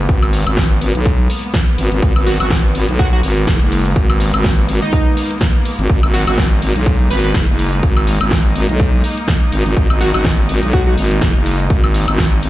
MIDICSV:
0, 0, Header, 1, 5, 480
1, 0, Start_track
1, 0, Key_signature, 5, "minor"
1, 0, Tempo, 483871
1, 88, Time_signature, 4, 2, 24, 8
1, 12395, End_track
2, 0, Start_track
2, 0, Title_t, "Digital synth lead"
2, 0, Program_c, 0, 84
2, 2248, Note_on_c, 0, 66, 88
2, 2334, Note_off_c, 0, 66, 0
2, 2383, Note_on_c, 0, 66, 77
2, 2450, Note_off_c, 0, 66, 0
2, 2969, Note_on_c, 0, 66, 92
2, 3055, Note_off_c, 0, 66, 0
2, 3104, Note_on_c, 0, 66, 81
2, 3171, Note_off_c, 0, 66, 0
2, 4784, Note_on_c, 0, 63, 91
2, 5263, Note_off_c, 0, 63, 0
2, 6087, Note_on_c, 0, 66, 90
2, 6174, Note_off_c, 0, 66, 0
2, 6223, Note_on_c, 0, 66, 78
2, 6290, Note_off_c, 0, 66, 0
2, 7049, Note_on_c, 0, 71, 86
2, 7135, Note_off_c, 0, 71, 0
2, 7183, Note_on_c, 0, 71, 79
2, 7250, Note_off_c, 0, 71, 0
2, 9928, Note_on_c, 0, 66, 89
2, 10014, Note_off_c, 0, 66, 0
2, 10063, Note_on_c, 0, 66, 77
2, 10130, Note_off_c, 0, 66, 0
2, 10649, Note_on_c, 0, 66, 92
2, 10735, Note_off_c, 0, 66, 0
2, 10783, Note_on_c, 0, 66, 76
2, 10850, Note_off_c, 0, 66, 0
2, 12395, End_track
3, 0, Start_track
3, 0, Title_t, "String section"
3, 0, Program_c, 1, 48
3, 0, Note_on_c, 1, 56, 80
3, 0, Note_on_c, 1, 58, 73
3, 0, Note_on_c, 1, 59, 84
3, 5836, Note_off_c, 1, 59, 0
3, 5849, Note_on_c, 1, 63, 89
3, 12395, Note_off_c, 1, 56, 0
3, 12395, Note_off_c, 1, 58, 0
3, 12395, Note_off_c, 1, 63, 0
3, 12395, End_track
4, 0, Start_track
4, 0, Title_t, "FM bass"
4, 0, Program_c, 2, 39
4, 88, Note_on_c, 2, 32, 103
4, 442, Note_off_c, 2, 32, 0
4, 463, Note_on_c, 2, 32, 101
4, 791, Note_off_c, 2, 32, 0
4, 808, Note_on_c, 2, 32, 100
4, 921, Note_off_c, 2, 32, 0
4, 942, Note_on_c, 2, 35, 99
4, 1271, Note_off_c, 2, 35, 0
4, 1767, Note_on_c, 2, 32, 95
4, 1881, Note_off_c, 2, 32, 0
4, 1903, Note_on_c, 2, 32, 101
4, 1991, Note_off_c, 2, 32, 0
4, 2008, Note_on_c, 2, 32, 102
4, 2121, Note_off_c, 2, 32, 0
4, 2142, Note_on_c, 2, 32, 99
4, 2361, Note_off_c, 2, 32, 0
4, 2382, Note_on_c, 2, 32, 95
4, 2711, Note_off_c, 2, 32, 0
4, 2728, Note_on_c, 2, 32, 98
4, 2841, Note_off_c, 2, 32, 0
4, 2862, Note_on_c, 2, 35, 96
4, 3191, Note_off_c, 2, 35, 0
4, 3208, Note_on_c, 2, 32, 100
4, 3431, Note_off_c, 2, 32, 0
4, 3448, Note_on_c, 2, 30, 93
4, 3561, Note_off_c, 2, 30, 0
4, 3583, Note_on_c, 2, 30, 98
4, 3911, Note_off_c, 2, 30, 0
4, 3928, Note_on_c, 2, 32, 107
4, 4281, Note_off_c, 2, 32, 0
4, 4303, Note_on_c, 2, 32, 101
4, 4631, Note_off_c, 2, 32, 0
4, 4648, Note_on_c, 2, 32, 100
4, 4761, Note_off_c, 2, 32, 0
4, 5743, Note_on_c, 2, 32, 96
4, 5831, Note_off_c, 2, 32, 0
4, 5848, Note_on_c, 2, 32, 101
4, 5961, Note_off_c, 2, 32, 0
4, 5983, Note_on_c, 2, 32, 104
4, 6201, Note_off_c, 2, 32, 0
4, 6223, Note_on_c, 2, 32, 98
4, 6551, Note_off_c, 2, 32, 0
4, 6568, Note_on_c, 2, 32, 97
4, 6681, Note_off_c, 2, 32, 0
4, 6703, Note_on_c, 2, 35, 98
4, 7031, Note_off_c, 2, 35, 0
4, 7048, Note_on_c, 2, 32, 98
4, 7271, Note_off_c, 2, 32, 0
4, 7288, Note_on_c, 2, 30, 98
4, 7401, Note_off_c, 2, 30, 0
4, 7423, Note_on_c, 2, 30, 97
4, 7751, Note_off_c, 2, 30, 0
4, 7768, Note_on_c, 2, 32, 105
4, 8121, Note_off_c, 2, 32, 0
4, 8143, Note_on_c, 2, 32, 93
4, 8471, Note_off_c, 2, 32, 0
4, 8488, Note_on_c, 2, 32, 100
4, 8601, Note_off_c, 2, 32, 0
4, 8622, Note_on_c, 2, 35, 101
4, 8951, Note_off_c, 2, 35, 0
4, 9448, Note_on_c, 2, 32, 96
4, 9561, Note_off_c, 2, 32, 0
4, 9582, Note_on_c, 2, 32, 101
4, 9671, Note_off_c, 2, 32, 0
4, 9688, Note_on_c, 2, 32, 102
4, 9801, Note_off_c, 2, 32, 0
4, 9822, Note_on_c, 2, 32, 100
4, 10041, Note_off_c, 2, 32, 0
4, 10062, Note_on_c, 2, 32, 99
4, 10391, Note_off_c, 2, 32, 0
4, 10408, Note_on_c, 2, 32, 102
4, 10521, Note_off_c, 2, 32, 0
4, 10542, Note_on_c, 2, 35, 96
4, 10871, Note_off_c, 2, 35, 0
4, 10888, Note_on_c, 2, 32, 99
4, 11111, Note_off_c, 2, 32, 0
4, 11128, Note_on_c, 2, 30, 97
4, 11241, Note_off_c, 2, 30, 0
4, 11263, Note_on_c, 2, 30, 98
4, 11591, Note_off_c, 2, 30, 0
4, 11608, Note_on_c, 2, 32, 104
4, 11961, Note_off_c, 2, 32, 0
4, 11983, Note_on_c, 2, 32, 97
4, 12311, Note_off_c, 2, 32, 0
4, 12328, Note_on_c, 2, 32, 98
4, 12395, Note_off_c, 2, 32, 0
4, 12395, End_track
5, 0, Start_track
5, 0, Title_t, "Drums"
5, 88, Note_on_c, 9, 36, 121
5, 88, Note_on_c, 9, 42, 67
5, 187, Note_off_c, 9, 42, 0
5, 188, Note_off_c, 9, 36, 0
5, 223, Note_on_c, 9, 42, 38
5, 223, Note_on_c, 9, 76, 61
5, 322, Note_off_c, 9, 42, 0
5, 322, Note_off_c, 9, 76, 0
5, 328, Note_on_c, 9, 46, 105
5, 427, Note_off_c, 9, 46, 0
5, 463, Note_on_c, 9, 42, 55
5, 463, Note_on_c, 9, 76, 65
5, 562, Note_off_c, 9, 42, 0
5, 562, Note_off_c, 9, 76, 0
5, 565, Note_on_c, 9, 38, 127
5, 568, Note_on_c, 9, 36, 115
5, 569, Note_on_c, 9, 42, 69
5, 664, Note_off_c, 9, 38, 0
5, 668, Note_off_c, 9, 36, 0
5, 668, Note_off_c, 9, 42, 0
5, 808, Note_on_c, 9, 46, 113
5, 907, Note_off_c, 9, 46, 0
5, 943, Note_on_c, 9, 42, 54
5, 1042, Note_off_c, 9, 42, 0
5, 1048, Note_on_c, 9, 36, 127
5, 1048, Note_on_c, 9, 42, 71
5, 1147, Note_off_c, 9, 36, 0
5, 1148, Note_off_c, 9, 42, 0
5, 1288, Note_on_c, 9, 46, 112
5, 1387, Note_off_c, 9, 46, 0
5, 1423, Note_on_c, 9, 42, 59
5, 1522, Note_off_c, 9, 42, 0
5, 1525, Note_on_c, 9, 38, 125
5, 1528, Note_on_c, 9, 36, 115
5, 1529, Note_on_c, 9, 42, 66
5, 1624, Note_off_c, 9, 38, 0
5, 1627, Note_off_c, 9, 36, 0
5, 1628, Note_off_c, 9, 42, 0
5, 1768, Note_on_c, 9, 46, 106
5, 1867, Note_off_c, 9, 46, 0
5, 1903, Note_on_c, 9, 42, 53
5, 2002, Note_off_c, 9, 42, 0
5, 2008, Note_on_c, 9, 36, 127
5, 2009, Note_on_c, 9, 42, 66
5, 2107, Note_off_c, 9, 36, 0
5, 2108, Note_off_c, 9, 42, 0
5, 2143, Note_on_c, 9, 42, 37
5, 2143, Note_on_c, 9, 76, 65
5, 2243, Note_off_c, 9, 42, 0
5, 2243, Note_off_c, 9, 76, 0
5, 2248, Note_on_c, 9, 46, 108
5, 2347, Note_off_c, 9, 46, 0
5, 2383, Note_on_c, 9, 42, 55
5, 2383, Note_on_c, 9, 76, 63
5, 2482, Note_off_c, 9, 42, 0
5, 2482, Note_off_c, 9, 76, 0
5, 2484, Note_on_c, 9, 38, 127
5, 2488, Note_on_c, 9, 36, 111
5, 2488, Note_on_c, 9, 42, 66
5, 2584, Note_off_c, 9, 38, 0
5, 2587, Note_off_c, 9, 42, 0
5, 2588, Note_off_c, 9, 36, 0
5, 2728, Note_on_c, 9, 46, 113
5, 2827, Note_off_c, 9, 46, 0
5, 2863, Note_on_c, 9, 42, 53
5, 2962, Note_off_c, 9, 42, 0
5, 2968, Note_on_c, 9, 36, 127
5, 2968, Note_on_c, 9, 42, 68
5, 3067, Note_off_c, 9, 42, 0
5, 3068, Note_off_c, 9, 36, 0
5, 3208, Note_on_c, 9, 46, 109
5, 3307, Note_off_c, 9, 46, 0
5, 3343, Note_on_c, 9, 42, 54
5, 3442, Note_off_c, 9, 42, 0
5, 3445, Note_on_c, 9, 38, 117
5, 3448, Note_on_c, 9, 36, 116
5, 3448, Note_on_c, 9, 42, 68
5, 3544, Note_off_c, 9, 38, 0
5, 3547, Note_off_c, 9, 42, 0
5, 3548, Note_off_c, 9, 36, 0
5, 3688, Note_on_c, 9, 46, 107
5, 3788, Note_off_c, 9, 46, 0
5, 3824, Note_on_c, 9, 42, 50
5, 3923, Note_off_c, 9, 42, 0
5, 3929, Note_on_c, 9, 36, 118
5, 3929, Note_on_c, 9, 42, 62
5, 4028, Note_off_c, 9, 36, 0
5, 4028, Note_off_c, 9, 42, 0
5, 4064, Note_on_c, 9, 42, 36
5, 4064, Note_on_c, 9, 76, 68
5, 4163, Note_off_c, 9, 42, 0
5, 4163, Note_off_c, 9, 76, 0
5, 4169, Note_on_c, 9, 46, 109
5, 4268, Note_off_c, 9, 46, 0
5, 4304, Note_on_c, 9, 42, 50
5, 4304, Note_on_c, 9, 76, 68
5, 4403, Note_off_c, 9, 42, 0
5, 4403, Note_off_c, 9, 76, 0
5, 4405, Note_on_c, 9, 38, 116
5, 4408, Note_on_c, 9, 36, 116
5, 4409, Note_on_c, 9, 42, 64
5, 4505, Note_off_c, 9, 38, 0
5, 4508, Note_off_c, 9, 36, 0
5, 4508, Note_off_c, 9, 42, 0
5, 4649, Note_on_c, 9, 46, 108
5, 4748, Note_off_c, 9, 46, 0
5, 4784, Note_on_c, 9, 42, 51
5, 4883, Note_off_c, 9, 42, 0
5, 4888, Note_on_c, 9, 36, 127
5, 4889, Note_on_c, 9, 42, 64
5, 4988, Note_off_c, 9, 36, 0
5, 4988, Note_off_c, 9, 42, 0
5, 5129, Note_on_c, 9, 46, 106
5, 5228, Note_off_c, 9, 46, 0
5, 5264, Note_on_c, 9, 42, 55
5, 5363, Note_off_c, 9, 42, 0
5, 5365, Note_on_c, 9, 38, 119
5, 5368, Note_on_c, 9, 36, 118
5, 5369, Note_on_c, 9, 42, 63
5, 5464, Note_off_c, 9, 38, 0
5, 5468, Note_off_c, 9, 36, 0
5, 5468, Note_off_c, 9, 42, 0
5, 5609, Note_on_c, 9, 46, 107
5, 5708, Note_off_c, 9, 46, 0
5, 5743, Note_on_c, 9, 42, 48
5, 5843, Note_off_c, 9, 42, 0
5, 5848, Note_on_c, 9, 36, 119
5, 5849, Note_on_c, 9, 42, 64
5, 5947, Note_off_c, 9, 36, 0
5, 5948, Note_off_c, 9, 42, 0
5, 5983, Note_on_c, 9, 42, 34
5, 5983, Note_on_c, 9, 76, 70
5, 6083, Note_off_c, 9, 42, 0
5, 6083, Note_off_c, 9, 76, 0
5, 6088, Note_on_c, 9, 46, 108
5, 6188, Note_off_c, 9, 46, 0
5, 6224, Note_on_c, 9, 42, 53
5, 6224, Note_on_c, 9, 76, 71
5, 6323, Note_off_c, 9, 42, 0
5, 6323, Note_off_c, 9, 76, 0
5, 6325, Note_on_c, 9, 38, 119
5, 6328, Note_on_c, 9, 36, 111
5, 6329, Note_on_c, 9, 42, 66
5, 6424, Note_off_c, 9, 38, 0
5, 6427, Note_off_c, 9, 36, 0
5, 6428, Note_off_c, 9, 42, 0
5, 6569, Note_on_c, 9, 46, 102
5, 6668, Note_off_c, 9, 46, 0
5, 6703, Note_on_c, 9, 42, 50
5, 6802, Note_off_c, 9, 42, 0
5, 6808, Note_on_c, 9, 36, 127
5, 6809, Note_on_c, 9, 42, 66
5, 6907, Note_off_c, 9, 36, 0
5, 6908, Note_off_c, 9, 42, 0
5, 7048, Note_on_c, 9, 46, 103
5, 7147, Note_off_c, 9, 46, 0
5, 7183, Note_on_c, 9, 42, 56
5, 7282, Note_off_c, 9, 42, 0
5, 7285, Note_on_c, 9, 38, 114
5, 7288, Note_on_c, 9, 36, 109
5, 7288, Note_on_c, 9, 42, 63
5, 7384, Note_off_c, 9, 38, 0
5, 7387, Note_off_c, 9, 36, 0
5, 7387, Note_off_c, 9, 42, 0
5, 7528, Note_on_c, 9, 46, 98
5, 7627, Note_off_c, 9, 46, 0
5, 7663, Note_on_c, 9, 42, 53
5, 7762, Note_off_c, 9, 42, 0
5, 7768, Note_on_c, 9, 36, 116
5, 7768, Note_on_c, 9, 42, 67
5, 7867, Note_off_c, 9, 36, 0
5, 7867, Note_off_c, 9, 42, 0
5, 7902, Note_on_c, 9, 42, 36
5, 7902, Note_on_c, 9, 76, 67
5, 8002, Note_off_c, 9, 42, 0
5, 8002, Note_off_c, 9, 76, 0
5, 8008, Note_on_c, 9, 46, 101
5, 8107, Note_off_c, 9, 46, 0
5, 8142, Note_on_c, 9, 42, 54
5, 8142, Note_on_c, 9, 76, 69
5, 8241, Note_off_c, 9, 42, 0
5, 8241, Note_off_c, 9, 76, 0
5, 8244, Note_on_c, 9, 38, 115
5, 8248, Note_on_c, 9, 36, 106
5, 8248, Note_on_c, 9, 42, 69
5, 8343, Note_off_c, 9, 38, 0
5, 8347, Note_off_c, 9, 36, 0
5, 8347, Note_off_c, 9, 42, 0
5, 8487, Note_on_c, 9, 46, 103
5, 8586, Note_off_c, 9, 46, 0
5, 8622, Note_on_c, 9, 42, 53
5, 8722, Note_off_c, 9, 42, 0
5, 8727, Note_on_c, 9, 42, 69
5, 8728, Note_on_c, 9, 36, 122
5, 8827, Note_off_c, 9, 36, 0
5, 8827, Note_off_c, 9, 42, 0
5, 8967, Note_on_c, 9, 46, 102
5, 9066, Note_off_c, 9, 46, 0
5, 9102, Note_on_c, 9, 42, 55
5, 9201, Note_off_c, 9, 42, 0
5, 9204, Note_on_c, 9, 38, 115
5, 9207, Note_on_c, 9, 42, 66
5, 9208, Note_on_c, 9, 36, 107
5, 9303, Note_off_c, 9, 38, 0
5, 9307, Note_off_c, 9, 36, 0
5, 9307, Note_off_c, 9, 42, 0
5, 9447, Note_on_c, 9, 46, 103
5, 9546, Note_off_c, 9, 46, 0
5, 9582, Note_on_c, 9, 42, 55
5, 9681, Note_off_c, 9, 42, 0
5, 9688, Note_on_c, 9, 36, 116
5, 9688, Note_on_c, 9, 42, 69
5, 9787, Note_off_c, 9, 36, 0
5, 9787, Note_off_c, 9, 42, 0
5, 9822, Note_on_c, 9, 42, 37
5, 9822, Note_on_c, 9, 76, 68
5, 9922, Note_off_c, 9, 42, 0
5, 9922, Note_off_c, 9, 76, 0
5, 9927, Note_on_c, 9, 46, 99
5, 10027, Note_off_c, 9, 46, 0
5, 10062, Note_on_c, 9, 42, 53
5, 10062, Note_on_c, 9, 76, 66
5, 10161, Note_off_c, 9, 42, 0
5, 10161, Note_off_c, 9, 76, 0
5, 10164, Note_on_c, 9, 38, 119
5, 10167, Note_on_c, 9, 42, 71
5, 10168, Note_on_c, 9, 36, 105
5, 10263, Note_off_c, 9, 38, 0
5, 10267, Note_off_c, 9, 36, 0
5, 10267, Note_off_c, 9, 42, 0
5, 10407, Note_on_c, 9, 46, 108
5, 10506, Note_off_c, 9, 46, 0
5, 10542, Note_on_c, 9, 42, 55
5, 10641, Note_off_c, 9, 42, 0
5, 10648, Note_on_c, 9, 36, 117
5, 10648, Note_on_c, 9, 42, 70
5, 10747, Note_off_c, 9, 36, 0
5, 10747, Note_off_c, 9, 42, 0
5, 10888, Note_on_c, 9, 46, 95
5, 10987, Note_off_c, 9, 46, 0
5, 11023, Note_on_c, 9, 42, 58
5, 11122, Note_off_c, 9, 42, 0
5, 11124, Note_on_c, 9, 38, 113
5, 11128, Note_on_c, 9, 36, 104
5, 11128, Note_on_c, 9, 42, 69
5, 11223, Note_off_c, 9, 38, 0
5, 11227, Note_off_c, 9, 36, 0
5, 11227, Note_off_c, 9, 42, 0
5, 11368, Note_on_c, 9, 46, 98
5, 11467, Note_off_c, 9, 46, 0
5, 11503, Note_on_c, 9, 42, 52
5, 11602, Note_off_c, 9, 42, 0
5, 11608, Note_on_c, 9, 36, 120
5, 11608, Note_on_c, 9, 42, 72
5, 11707, Note_off_c, 9, 36, 0
5, 11707, Note_off_c, 9, 42, 0
5, 11743, Note_on_c, 9, 42, 39
5, 11743, Note_on_c, 9, 76, 65
5, 11842, Note_off_c, 9, 42, 0
5, 11842, Note_off_c, 9, 76, 0
5, 11848, Note_on_c, 9, 46, 103
5, 11947, Note_off_c, 9, 46, 0
5, 11983, Note_on_c, 9, 42, 60
5, 11983, Note_on_c, 9, 76, 66
5, 12082, Note_off_c, 9, 42, 0
5, 12082, Note_off_c, 9, 76, 0
5, 12084, Note_on_c, 9, 38, 121
5, 12088, Note_on_c, 9, 36, 103
5, 12088, Note_on_c, 9, 42, 75
5, 12184, Note_off_c, 9, 38, 0
5, 12187, Note_off_c, 9, 36, 0
5, 12187, Note_off_c, 9, 42, 0
5, 12328, Note_on_c, 9, 46, 104
5, 12395, Note_off_c, 9, 46, 0
5, 12395, End_track
0, 0, End_of_file